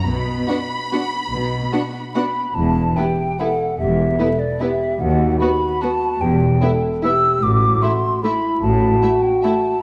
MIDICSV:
0, 0, Header, 1, 8, 480
1, 0, Start_track
1, 0, Key_signature, 1, "minor"
1, 0, Tempo, 418994
1, 65, Time_signature, 3, 2, 24, 8
1, 2470, Tempo, 409556
1, 5350, Tempo, 400534
1, 11591, End_track
2, 0, Start_track
2, 0, Title_t, "Flute"
2, 0, Program_c, 0, 73
2, 2454, Note_on_c, 0, 83, 52
2, 2925, Note_on_c, 0, 81, 59
2, 2943, Note_off_c, 0, 83, 0
2, 3414, Note_on_c, 0, 79, 57
2, 3432, Note_off_c, 0, 81, 0
2, 3920, Note_on_c, 0, 78, 57
2, 3938, Note_off_c, 0, 79, 0
2, 4371, Note_off_c, 0, 78, 0
2, 4378, Note_on_c, 0, 76, 55
2, 5090, Note_on_c, 0, 74, 50
2, 5107, Note_off_c, 0, 76, 0
2, 5342, Note_on_c, 0, 76, 57
2, 5359, Note_off_c, 0, 74, 0
2, 5819, Note_on_c, 0, 78, 51
2, 5837, Note_off_c, 0, 76, 0
2, 6278, Note_off_c, 0, 78, 0
2, 6285, Note_on_c, 0, 83, 60
2, 6791, Note_on_c, 0, 81, 65
2, 6809, Note_off_c, 0, 83, 0
2, 7264, Note_on_c, 0, 79, 56
2, 7282, Note_off_c, 0, 81, 0
2, 7997, Note_off_c, 0, 79, 0
2, 8255, Note_on_c, 0, 88, 68
2, 8725, Note_on_c, 0, 86, 60
2, 8743, Note_off_c, 0, 88, 0
2, 9200, Note_on_c, 0, 84, 56
2, 9218, Note_off_c, 0, 86, 0
2, 9680, Note_off_c, 0, 84, 0
2, 9687, Note_on_c, 0, 83, 58
2, 10144, Note_off_c, 0, 83, 0
2, 10151, Note_on_c, 0, 81, 56
2, 10875, Note_on_c, 0, 79, 59
2, 10893, Note_off_c, 0, 81, 0
2, 11123, Note_on_c, 0, 81, 68
2, 11141, Note_off_c, 0, 79, 0
2, 11591, Note_off_c, 0, 81, 0
2, 11591, End_track
3, 0, Start_track
3, 0, Title_t, "Violin section"
3, 0, Program_c, 1, 48
3, 67, Note_on_c, 1, 83, 57
3, 2712, Note_off_c, 1, 83, 0
3, 3430, Note_on_c, 1, 71, 36
3, 3524, Note_off_c, 1, 71, 0
3, 3919, Note_on_c, 1, 71, 40
3, 4013, Note_off_c, 1, 71, 0
3, 4852, Note_on_c, 1, 71, 41
3, 4946, Note_off_c, 1, 71, 0
3, 5349, Note_on_c, 1, 71, 39
3, 5445, Note_off_c, 1, 71, 0
3, 6296, Note_on_c, 1, 71, 38
3, 6392, Note_off_c, 1, 71, 0
3, 6800, Note_on_c, 1, 71, 36
3, 6896, Note_off_c, 1, 71, 0
3, 7753, Note_on_c, 1, 76, 40
3, 7849, Note_off_c, 1, 76, 0
3, 8275, Note_on_c, 1, 76, 42
3, 8371, Note_off_c, 1, 76, 0
3, 9207, Note_on_c, 1, 76, 41
3, 9303, Note_off_c, 1, 76, 0
3, 9703, Note_on_c, 1, 76, 38
3, 9799, Note_off_c, 1, 76, 0
3, 10644, Note_on_c, 1, 76, 42
3, 10739, Note_off_c, 1, 76, 0
3, 11125, Note_on_c, 1, 76, 45
3, 11221, Note_off_c, 1, 76, 0
3, 11591, End_track
4, 0, Start_track
4, 0, Title_t, "French horn section"
4, 0, Program_c, 2, 60
4, 2949, Note_on_c, 2, 64, 42
4, 3393, Note_off_c, 2, 64, 0
4, 3434, Note_on_c, 2, 67, 44
4, 3920, Note_on_c, 2, 69, 50
4, 3924, Note_off_c, 2, 67, 0
4, 4370, Note_off_c, 2, 69, 0
4, 4379, Note_on_c, 2, 67, 46
4, 4854, Note_off_c, 2, 67, 0
4, 4854, Note_on_c, 2, 69, 45
4, 5345, Note_on_c, 2, 67, 47
4, 5350, Note_off_c, 2, 69, 0
4, 5821, Note_on_c, 2, 66, 46
4, 5823, Note_off_c, 2, 67, 0
4, 6778, Note_off_c, 2, 66, 0
4, 6800, Note_on_c, 2, 66, 53
4, 7259, Note_on_c, 2, 67, 46
4, 7261, Note_off_c, 2, 66, 0
4, 7744, Note_off_c, 2, 67, 0
4, 7751, Note_on_c, 2, 69, 48
4, 8241, Note_off_c, 2, 69, 0
4, 8253, Note_on_c, 2, 67, 47
4, 8723, Note_on_c, 2, 66, 48
4, 8726, Note_off_c, 2, 67, 0
4, 9678, Note_on_c, 2, 64, 46
4, 9694, Note_off_c, 2, 66, 0
4, 10143, Note_off_c, 2, 64, 0
4, 10167, Note_on_c, 2, 66, 60
4, 11591, Note_off_c, 2, 66, 0
4, 11591, End_track
5, 0, Start_track
5, 0, Title_t, "Violin section"
5, 0, Program_c, 3, 48
5, 555, Note_on_c, 3, 78, 32
5, 556, Note_on_c, 3, 66, 36
5, 647, Note_off_c, 3, 78, 0
5, 648, Note_off_c, 3, 66, 0
5, 1063, Note_on_c, 3, 66, 33
5, 1063, Note_on_c, 3, 78, 35
5, 1154, Note_off_c, 3, 78, 0
5, 1155, Note_off_c, 3, 66, 0
5, 1982, Note_on_c, 3, 66, 33
5, 1986, Note_on_c, 3, 78, 33
5, 2074, Note_off_c, 3, 66, 0
5, 2077, Note_off_c, 3, 78, 0
5, 2471, Note_on_c, 3, 78, 35
5, 2472, Note_on_c, 3, 66, 36
5, 2565, Note_off_c, 3, 78, 0
5, 2566, Note_off_c, 3, 66, 0
5, 3429, Note_on_c, 3, 64, 39
5, 3523, Note_off_c, 3, 64, 0
5, 3933, Note_on_c, 3, 64, 44
5, 4027, Note_off_c, 3, 64, 0
5, 4865, Note_on_c, 3, 64, 42
5, 4959, Note_off_c, 3, 64, 0
5, 5346, Note_on_c, 3, 64, 39
5, 5442, Note_off_c, 3, 64, 0
5, 6316, Note_on_c, 3, 66, 46
5, 6412, Note_off_c, 3, 66, 0
5, 6800, Note_on_c, 3, 66, 41
5, 6896, Note_off_c, 3, 66, 0
5, 7757, Note_on_c, 3, 64, 44
5, 7853, Note_off_c, 3, 64, 0
5, 8252, Note_on_c, 3, 64, 39
5, 8347, Note_off_c, 3, 64, 0
5, 9204, Note_on_c, 3, 64, 46
5, 9300, Note_off_c, 3, 64, 0
5, 9704, Note_on_c, 3, 64, 43
5, 9800, Note_off_c, 3, 64, 0
5, 10638, Note_on_c, 3, 64, 42
5, 10734, Note_off_c, 3, 64, 0
5, 11142, Note_on_c, 3, 64, 47
5, 11238, Note_off_c, 3, 64, 0
5, 11591, End_track
6, 0, Start_track
6, 0, Title_t, "Viola section"
6, 0, Program_c, 4, 48
6, 552, Note_on_c, 4, 62, 31
6, 558, Note_on_c, 4, 59, 32
6, 643, Note_off_c, 4, 62, 0
6, 650, Note_off_c, 4, 59, 0
6, 1058, Note_on_c, 4, 59, 33
6, 1060, Note_on_c, 4, 62, 33
6, 1149, Note_off_c, 4, 59, 0
6, 1151, Note_off_c, 4, 62, 0
6, 1981, Note_on_c, 4, 62, 31
6, 1983, Note_on_c, 4, 59, 34
6, 2073, Note_off_c, 4, 62, 0
6, 2075, Note_off_c, 4, 59, 0
6, 2469, Note_on_c, 4, 59, 33
6, 2475, Note_on_c, 4, 62, 35
6, 2563, Note_off_c, 4, 59, 0
6, 2569, Note_off_c, 4, 62, 0
6, 3428, Note_on_c, 4, 59, 40
6, 3522, Note_off_c, 4, 59, 0
6, 3931, Note_on_c, 4, 59, 41
6, 4025, Note_off_c, 4, 59, 0
6, 4858, Note_on_c, 4, 59, 40
6, 4952, Note_off_c, 4, 59, 0
6, 5358, Note_on_c, 4, 59, 41
6, 5454, Note_off_c, 4, 59, 0
6, 6302, Note_on_c, 4, 59, 40
6, 6397, Note_off_c, 4, 59, 0
6, 6802, Note_on_c, 4, 59, 39
6, 6898, Note_off_c, 4, 59, 0
6, 7757, Note_on_c, 4, 59, 40
6, 7853, Note_off_c, 4, 59, 0
6, 8254, Note_on_c, 4, 59, 41
6, 8350, Note_off_c, 4, 59, 0
6, 9201, Note_on_c, 4, 57, 41
6, 9296, Note_off_c, 4, 57, 0
6, 9687, Note_on_c, 4, 57, 41
6, 9783, Note_off_c, 4, 57, 0
6, 10639, Note_on_c, 4, 57, 42
6, 10734, Note_off_c, 4, 57, 0
6, 11139, Note_on_c, 4, 57, 46
6, 11234, Note_off_c, 4, 57, 0
6, 11591, End_track
7, 0, Start_track
7, 0, Title_t, "Cello section"
7, 0, Program_c, 5, 48
7, 65, Note_on_c, 5, 47, 41
7, 461, Note_off_c, 5, 47, 0
7, 1501, Note_on_c, 5, 47, 40
7, 1891, Note_off_c, 5, 47, 0
7, 2941, Note_on_c, 5, 40, 52
7, 3339, Note_off_c, 5, 40, 0
7, 4385, Note_on_c, 5, 40, 52
7, 4774, Note_off_c, 5, 40, 0
7, 5826, Note_on_c, 5, 39, 55
7, 6215, Note_off_c, 5, 39, 0
7, 7261, Note_on_c, 5, 40, 54
7, 7661, Note_off_c, 5, 40, 0
7, 8717, Note_on_c, 5, 45, 50
7, 9111, Note_off_c, 5, 45, 0
7, 10154, Note_on_c, 5, 45, 59
7, 10548, Note_off_c, 5, 45, 0
7, 11591, End_track
8, 0, Start_track
8, 0, Title_t, "Double bass section"
8, 0, Program_c, 6, 48
8, 78, Note_on_c, 6, 35, 41
8, 447, Note_off_c, 6, 35, 0
8, 1513, Note_on_c, 6, 35, 43
8, 1878, Note_off_c, 6, 35, 0
8, 2946, Note_on_c, 6, 28, 45
8, 3342, Note_off_c, 6, 28, 0
8, 4386, Note_on_c, 6, 28, 50
8, 4774, Note_off_c, 6, 28, 0
8, 5828, Note_on_c, 6, 39, 48
8, 6216, Note_off_c, 6, 39, 0
8, 7273, Note_on_c, 6, 28, 50
8, 7667, Note_off_c, 6, 28, 0
8, 8732, Note_on_c, 6, 33, 51
8, 9118, Note_off_c, 6, 33, 0
8, 10160, Note_on_c, 6, 33, 56
8, 10551, Note_off_c, 6, 33, 0
8, 11591, End_track
0, 0, End_of_file